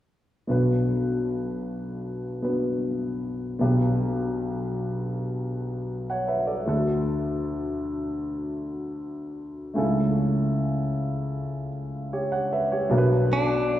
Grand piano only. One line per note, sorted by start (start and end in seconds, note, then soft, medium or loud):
0.47 3.56 B1 soft
0.47 3.56 B2 soft
0.47 2.40 B3 soft
0.47 2.40 D4 soft
0.47 2.41 F#4 soft
0.47 2.41 B4 medium
2.42 3.58 B3 soft
2.42 3.59 D4 soft
2.42 3.60 F#4 soft
2.42 3.60 B4 soft
3.59 6.64 B1 soft
3.59 6.64 B2 soft
3.59 6.63 B3 soft
3.59 6.64 D4 soft
3.59 6.64 G4 soft
3.59 5.50 B4 medium
6.10 6.28 C#5 soft
6.10 6.28 F#5 medium
6.28 6.47 B4 soft
6.28 6.47 E5 soft
6.47 6.67 A4 soft
6.47 6.84 D5 soft
6.65 9.72 D2 soft
6.65 9.72 D3 soft
6.65 9.71 A3 soft
6.65 9.71 D4 soft
6.65 9.72 F#4 soft
6.65 9.73 A4 medium
9.74 12.87 C#2 soft
9.74 12.87 C#3 medium
9.74 12.86 A3 soft
9.74 12.86 C#4 soft
9.74 12.87 E4 soft
9.78 11.69 A4 medium
12.13 12.31 G4 soft
12.13 12.31 C#5 soft
12.32 12.51 C#5 soft
12.32 12.51 F#5 medium
12.52 12.71 B4 soft
12.52 12.71 E5 medium
12.72 13.09 G4 soft
12.72 13.09 C#5 soft
12.90 13.80 B1 medium
12.90 13.80 B2 medium
12.90 13.80 B3 medium
12.90 13.80 D4 medium
12.90 13.80 F#4 medium
12.90 12.97 A#4 medium
12.98 13.80 B4 medium